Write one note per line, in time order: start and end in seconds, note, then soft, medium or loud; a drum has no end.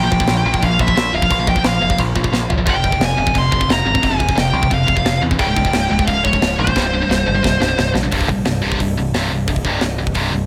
0.00 0.10 A#2 medium
0.00 0.10 F3 medium
0.00 0.64 G5 loud
0.11 0.24 A#1 medium
0.11 0.19 A#2 medium
0.11 0.19 F3 medium
0.11 kick medium
0.20 0.27 A#2 medium
0.20 0.27 F3 medium
0.20 kick loud
0.27 0.41 A#1 loud
0.27 0.44 A#2 medium
0.27 0.43 F3 medium
0.27 snare loud
0.27 crash medium
0.45 0.58 A#1 loud
0.45 0.53 A#2 medium
0.45 0.52 F3 medium
0.54 0.61 A#2 medium
0.54 0.62 F3 medium
0.54 kick medium
0.62 0.76 A#1 loud
0.62 0.77 A#2 medium
0.62 0.78 F3 medium
0.62 0.80 F5 loud
0.62 kick loud
0.62 crash medium
0.79 0.93 A#1 medium
0.79 0.87 A#2 medium
0.79 0.87 F3 medium
0.79 1.15 E5 medium
0.79 kick loud
0.88 0.95 A#2 medium
0.88 0.95 F3 medium
0.88 kick medium
0.96 1.09 A#1 medium
0.96 1.11 A#2 medium
0.96 1.12 F3 loud
0.96 snare loud
0.96 crash medium
1.13 1.26 C#1 medium
1.13 1.21 A#2 medium
1.13 1.21 F3 medium
1.13 1.46 F5 medium
1.22 1.29 A#2 medium
1.22 1.30 F3 medium
1.22 kick medium
1.30 1.57 A#1 loud
1.30 1.38 A#2 medium
1.30 1.38 F3 medium
1.30 kick loud
1.30 crash medium
1.39 1.47 A#2 medium
1.39 1.46 F3 medium
1.47 1.55 A#2 medium
1.47 1.55 F3 medium
1.47 1.66 G5 loud
1.47 kick medium
1.56 1.63 A#2 medium
1.56 1.64 F3 medium
1.56 kick medium
1.64 1.77 A#1 loud
1.64 1.79 A#2 medium
1.64 1.80 F3 medium
1.64 1.98 F5 medium
1.64 snare loud
1.64 crash medium
1.81 1.94 F1 medium
1.81 1.89 A#2 medium
1.81 1.89 F3 medium
1.90 1.98 A#2 medium
1.90 1.98 F3 medium
1.90 kick medium
1.99 2.12 A#1 medium
1.99 2.14 A#2 medium
1.99 2.14 F3 medium
1.99 kick loud
1.99 crash medium
2.15 2.28 A#1 medium
2.15 2.23 A#2 medium
2.15 2.22 F3 medium
2.15 kick medium
2.23 2.31 A#2 medium
2.23 2.31 F3 medium
2.23 kick medium
2.32 2.45 A#1 medium
2.32 2.48 A#2 medium
2.32 2.48 F3 medium
2.32 snare medium
2.49 2.66 G#1 medium
2.49 2.57 A#2 medium
2.49 2.56 F3 medium
2.49 floor tom loud
2.57 2.65 A#2 medium
2.57 2.66 F3 medium
2.65 2.79 F1 loud
2.65 2.73 F2 medium
2.65 2.74 C3 medium
2.65 2.74 F3 loud
2.65 kick loud
2.65 crash medium
2.70 3.03 G5 medium
2.75 2.82 F2 medium
2.75 2.82 C3 loud
2.83 2.97 F1 loud
2.83 2.91 F2 medium
2.83 2.91 C3 medium
2.83 kick medium
2.92 2.99 F2 medium
2.92 3.00 C3 medium
2.92 kick medium
3.00 3.13 F1 loud
3.00 3.16 F2 medium
3.00 3.16 C3 medium
3.00 snare loud
3.00 crash medium
3.04 3.37 G#5 loud
3.17 3.30 F1 loud
3.17 3.26 F2 medium
3.17 3.25 C3 medium
3.26 3.33 F2 medium
3.26 3.33 C3 medium
3.26 kick medium
3.34 3.48 F1 loud
3.34 3.50 F2 medium
3.34 3.50 C3 medium
3.34 kick loud
3.34 crash medium
3.38 3.71 C6 loud
3.52 3.65 F1 medium
3.52 3.59 F2 medium
3.52 3.59 C3 medium
3.52 kick medium
3.60 3.68 F2 medium
3.60 3.68 C3 medium
3.60 kick medium
3.68 3.81 F1 medium
3.68 3.84 F2 medium
3.68 3.84 C3 loud
3.68 snare loud
3.68 crash medium
3.73 4.06 A#5 loud
3.85 3.98 G#1 medium
3.85 3.94 F2 medium
3.85 3.93 C3 medium
3.94 4.01 F2 medium
3.94 4.01 C3 medium
3.94 kick medium
4.02 4.29 F1 loud
4.02 4.10 F2 medium
4.02 4.09 C3 medium
4.02 4.39 G#5 loud
4.02 kick loud
4.02 crash medium
4.10 4.18 F2 medium
4.10 4.18 C3 medium
4.19 4.27 F2 medium
4.19 4.27 C3 medium
4.19 kick medium
4.28 4.34 F2 medium
4.28 4.35 C3 medium
4.28 kick loud
4.35 4.50 F1 medium
4.35 4.51 F2 medium
4.35 4.52 C3 medium
4.35 snare loud
4.35 crash medium
4.40 4.70 G5 loud
4.53 4.66 C2 loud
4.53 4.61 F2 medium
4.53 4.60 C3 loud
4.62 4.69 F2 medium
4.62 4.69 C3 medium
4.62 kick medium
4.70 4.84 F1 loud
4.70 4.85 F2 medium
4.70 4.85 C3 medium
4.70 5.20 F5 loud
4.70 kick medium
4.70 crash medium
4.87 5.01 F1 medium
4.87 4.95 F2 medium
4.87 4.95 C3 medium
4.87 kick medium
4.96 5.04 F2 medium
4.96 5.04 C3 medium
4.96 kick medium
5.05 5.18 F1 medium
5.05 5.20 F2 medium
5.05 5.20 C3 loud
5.05 snare loud
5.05 crash medium
5.22 5.35 E2 medium
5.22 5.30 F2 medium
5.22 5.30 C3 loud
5.31 5.38 F2 medium
5.31 5.39 C3 medium
5.31 kick medium
5.39 5.52 C#1 loud
5.39 5.46 C#2 loud
5.39 5.46 G#2 loud
5.39 5.47 C#3 loud
5.39 6.03 G5 loud
5.39 kick loud
5.39 crash medium
5.47 5.56 C#2 medium
5.47 5.55 G#2 medium
5.56 5.69 C#1 loud
5.56 5.65 C#2 medium
5.56 5.65 G#2 medium
5.56 kick medium
5.65 5.73 C#2 medium
5.65 5.73 G#2 medium
5.65 kick loud
5.73 5.86 C#1 loud
5.73 5.89 C#2 medium
5.73 5.89 G#2 medium
5.73 snare loud
5.73 crash medium
5.90 6.04 C#1 medium
5.90 5.98 C#2 medium
5.90 5.98 G#2 medium
5.99 6.07 C#2 medium
5.99 6.07 G#2 medium
5.99 kick medium
6.07 6.21 C#1 medium
6.07 6.23 C#2 medium
6.07 6.23 G#2 medium
6.07 6.23 F5 loud
6.07 kick medium
6.07 crash medium
6.24 6.37 C#1 loud
6.24 6.33 C#2 medium
6.24 6.33 G#2 medium
6.24 6.59 C#5 medium
6.24 kick medium
6.33 6.41 C#2 medium
6.33 6.41 G#2 medium
6.33 kick medium
6.41 6.54 C#1 medium
6.41 6.57 C#2 medium
6.41 6.57 G#2 medium
6.41 snare loud
6.41 crash medium
6.59 6.72 A#1 loud
6.59 6.67 C#2 medium
6.59 6.66 G#2 loud
6.59 7.91 C5 medium
6.67 6.75 C#2 medium
6.67 6.75 G#2 medium
6.67 kick medium
6.76 7.01 C1 loud
6.76 6.83 C2 loud
6.76 6.83 G2 loud
6.76 6.83 C3 loud
6.76 kick loud
6.76 snare medium
6.85 6.92 C2 medium
6.85 6.92 G2 medium
6.93 7.01 C2 medium
6.93 7.01 G2 medium
7.02 7.09 C2 medium
7.02 7.09 G2 medium
7.09 7.22 C1 loud
7.09 7.25 C2 medium
7.09 7.25 G2 medium
7.09 snare medium
7.27 7.40 G1 loud
7.27 7.34 C2 medium
7.27 7.34 G2 medium
7.35 7.42 C2 medium
7.35 7.43 G2 medium
7.43 7.57 C1 loud
7.43 7.58 C2 medium
7.43 7.59 G2 medium
7.43 kick loud
7.43 snare medium
7.61 7.73 C1 medium
7.61 7.67 C2 medium
7.61 7.66 G2 medium
7.61 snare medium
7.68 7.77 C2 medium
7.68 7.77 G2 medium
7.78 7.90 C1 loud
7.78 7.93 C2 medium
7.78 7.93 G2 medium
7.78 snare loud
7.94 8.07 A#1 medium
7.94 8.02 C2 medium
7.94 8.02 G2 medium
7.94 snare medium
8.03 8.10 C2 medium
8.03 8.11 G2 medium
8.11 8.28 C1 medium
8.11 8.27 C2 medium
8.11 8.28 G2 medium
8.11 8.28 C3 medium
8.11 kick loud
8.11 open hi-hat medium
8.21 kick medium
8.28 8.45 A#1 medium
8.28 8.44 C2 medium
8.28 8.44 G2 medium
8.28 kick medium
8.45 8.62 C1 medium
8.45 8.61 C2 medium
8.45 8.61 G2 medium
8.45 snare loud
8.45 open hi-hat medium
8.62 8.79 C1 medium
8.62 8.78 C2 medium
8.62 8.78 G2 medium
8.62 8.79 C3 loud
8.72 kick medium
8.80 8.96 C1 medium
8.80 8.95 C2 medium
8.80 8.95 G2 medium
8.80 kick medium
8.80 open hi-hat medium
8.97 9.13 C1 medium
8.97 9.12 C2 medium
8.97 9.12 G2 medium
9.14 9.30 C1 medium
9.14 9.30 C2 medium
9.14 9.30 G2 medium
9.14 9.30 C3 medium
9.14 snare loud
9.14 open hi-hat medium
9.30 9.46 C1 medium
9.30 9.46 C2 medium
9.30 9.46 G2 medium
9.48 9.64 C1 medium
9.48 9.63 C2 medium
9.48 9.64 G2 medium
9.48 kick loud
9.48 open hi-hat medium
9.56 kick medium
9.65 9.81 C1 medium
9.65 9.81 C2 medium
9.65 9.81 G2 medium
9.65 9.82 C3 medium
9.65 kick medium
9.81 9.98 C1 medium
9.81 9.97 C2 medium
9.81 9.97 G2 medium
9.81 snare loud
9.81 open hi-hat soft
9.98 10.15 C1 medium
9.98 10.13 C2 medium
9.98 10.14 G2 medium
10.07 kick medium
10.14 10.31 C1 medium
10.14 10.31 C2 medium
10.14 10.32 G2 loud
10.14 10.32 C3 loud
10.14 kick medium
10.14 open hi-hat soft
10.32 10.46 C1 medium
10.32 10.46 C2 medium
10.32 10.46 G2 medium